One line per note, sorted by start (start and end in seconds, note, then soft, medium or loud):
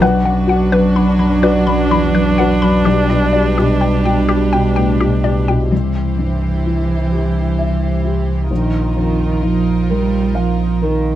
0.00 2.81 B1 medium
0.00 5.72 B1 medium
0.00 2.81 F#3 medium
0.00 5.47 D4 medium
0.00 5.71 D4 medium
0.00 2.85 F#4 medium
0.00 5.71 B4 medium
0.00 0.16 B4 medium
0.00 1.38 F#5 medium
0.24 0.62 F#2 soft
0.24 0.39 F#5 medium
0.47 0.85 F#4 soft
0.47 0.63 F#5 medium
0.72 1.09 F#2 soft
0.72 0.86 B4 medium
0.95 1.33 D4 soft
0.95 1.10 B5 soft
1.19 1.57 F#2 soft
1.19 1.33 B5 medium
1.43 1.80 F#4 soft
1.43 1.57 B4 medium
1.43 2.34 D5 medium
1.67 2.04 F#2 soft
1.67 1.81 B5 medium
1.90 2.14 E2 soft
1.90 2.05 B5 medium
2.15 2.52 F#2 soft
2.15 2.29 B4 medium
2.38 2.77 F#4 soft
2.38 2.83 B4 medium
2.38 2.52 F#5 medium
2.62 2.86 F#2 soft
2.62 2.76 B5 medium
2.84 5.68 B1 medium
2.84 5.47 G3 medium
2.84 5.71 G4 soft
2.84 3.00 G4 medium
2.84 4.25 D5 medium
3.10 3.48 B2 soft
3.10 3.24 D5 medium
3.33 3.72 G4 soft
3.33 3.47 D5 soft
3.58 3.96 B2 soft
3.58 3.72 G4 medium
3.81 4.19 D4 soft
3.81 3.95 G5 soft
4.05 4.43 B2 soft
4.05 4.19 G5 medium
4.29 4.43 G4 medium
4.29 4.67 G4 soft
4.53 4.91 B2 soft
4.53 4.67 G5 medium
4.76 5.00 A2 soft
4.76 4.90 G5 medium
5.00 5.39 B2 soft
5.00 5.15 G4 medium
5.24 5.62 G4 soft
5.24 5.38 D5 medium
5.48 5.72 B2 soft
5.48 5.62 G5 medium
5.72 8.51 C2 soft
5.72 8.47 C2 soft
5.72 8.47 E3 soft
5.72 8.47 E4 soft
5.72 8.47 G4 soft
5.72 8.47 C5 soft
6.19 6.93 G2 soft
6.66 7.40 E4 soft
7.12 7.86 G4 soft
7.59 8.32 E5 soft
8.05 8.51 G4 soft
8.50 11.15 A#1 medium
8.50 11.15 A#1 soft
8.50 8.96 D#3 soft
8.50 11.15 D#4 soft
8.50 11.15 F4 soft
8.50 11.15 A#4 soft
8.96 9.70 F2 soft
8.96 9.45 D#3 soft
9.42 9.92 F3 soft
9.42 10.16 D#4 soft
9.90 10.37 G3 soft
9.90 10.63 A#4 soft
10.35 10.84 F3 soft
10.35 11.09 F5 soft
10.82 11.15 D#3 soft
10.82 11.15 A#4 soft